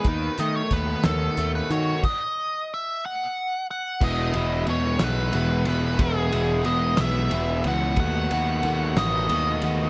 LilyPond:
<<
  \new Staff \with { instrumentName = "Lead electric guitar" } { \time 6/8 \key e \major \tempo 4. = 61 b'8 dis''16 cis''16 b'8 a'8. b'16 cis''8 | dis''4 e''8 fis''4 fis''8 | dis''4 cis''8 b'4 b'8 | gis'4 dis''8 e''4 fis''8 |
fis''4. dis''4. | }
  \new Staff \with { instrumentName = "Overdriven electric guitar" } { \clef bass \time 6/8 \key e \major dis8 a8 b8 dis8 a8 fis'8 | r2. | <e, b, e gis b e'>8 <e, b, e gis b e'>8 <e, b, e gis b e'>8 <e, b, e gis b e'>8 <e, b, e gis b e'>8 <e, b, e gis b e'>8 | <e, b, e gis b e'>8 <e, b, e gis b e'>8 <e, b, e gis b e'>8 <e, b, e gis b e'>8 <e, b, e gis b e'>8 <e, b, e gis b e'>8 |
<dis a b fis'>8 <dis a b fis'>8 <dis a b fis'>8 <dis a b fis'>8 <dis a b fis'>8 <dis a b fis'>8 | }
  \new Staff \with { instrumentName = "Picked electric bass" } { \clef bass \time 6/8 \key e \major dis,8 dis8 dis,8 dis,8 dis,8 dis8 | r2. | e,,8 e,,8 e,,8 b,,8 e,,8 e,,8 | e,,8 e,,8 e,,8 b,,8 e,,8 cis,8 |
dis,8 dis,8 dis,8 a,,8 dis,8 dis,8 | }
  \new DrumStaff \with { instrumentName = "Drums" } \drummode { \time 6/8 <hh bd>8 hh8 <hh bd>8 <hh sn>8 hh8 hh8 | <cymc bd>4. r4. | <cymc bd>8 cymr8 cymr8 <cymr sn>8 cymr8 cymr8 | <bd cymr>8 cymr8 cymr8 <cymr sn>8 cymr8 cymr8 |
<bd cymr>8 cymr8 cymr8 <cymr sn>8 cymr8 cymr8 | }
>>